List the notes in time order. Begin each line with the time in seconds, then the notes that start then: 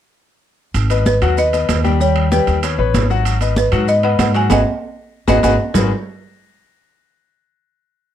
0.74 G#1, high conga, high timbale, maracas
0.90 B3 B4 D#5, high conga, high timbale, maracas
1.06 B4, high conga, low timbale, maracas
1.22 D#2 F#3 F#4 F#5, high timbale, maracas
1.37 B3 B4 D#5, high conga, maracas
1.53 B3 B4 D#5, high conga, high timbale, maracas
1.69 D#2, high conga, high timbale, low timbale, maracas
1.84 G3 G4 G5, high conga, high timbale, maracas
2.00 G3 G4 C#5 G5, high conga, maracas
2.16 high conga, high timbale
2.32 G3 G4 B4 G5, high conga, low timbale, maracas
2.47 D#2, high conga, high timbale, maracas
2.63 B3 B4 C#5, high conga, high timbale, maracas
2.78 A1 B3 B4 C#5, high conga
2.94 G#1, high conga, high timbale, low timbale, maracas
3.10 F#3 F#4 F#5, high conga, maracas
3.25 high conga, high timbale, maracas
3.41 B3 B4 D#5, high conga, high timbale, maracas
3.56 B4, high conga, low timbale, maracas
3.72 G#2 F#3 F#4 F#5, high timbale, maracas
3.88 B3 B4 D#5, high conga, maracas
4.03 B3 B4 D#5 F#5, high conga, high timbale
4.19 G#2 F#5, high conga, high timbale, low timbale, maracas
4.34 F#3 F#4 F#5 G#5, high timbale, maracas
4.50 G#1 F#4 G#4 B4 D#5 F#5 G#5, high conga, high timbale, maracas
5.28 G#1 F#4 G#4 B4 D#5 F#5 G#5, high conga, high timbale, maracas
5.43 G#1 F#4 G#4 B4 D#5 F#5 G#5, high conga, high timbale, maracas
5.74 G#1 G#3 D#4 F#4 G#4 A#4 B4, low conga, low timbale, maracas